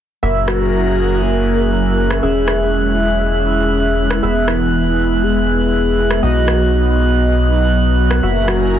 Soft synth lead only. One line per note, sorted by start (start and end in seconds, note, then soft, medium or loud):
0.48 1.19 F#4 medium
1.23 1.69 A#4 loud
1.73 2.19 A#4 loud
2.23 3.19 G#4 loud
4.48 5.24 E4 loud
5.23 5.72 G#4 loud
5.73 6.24 G#4 loud
6.23 7.23 F#4 loud
8.48 8.79 F#4 loud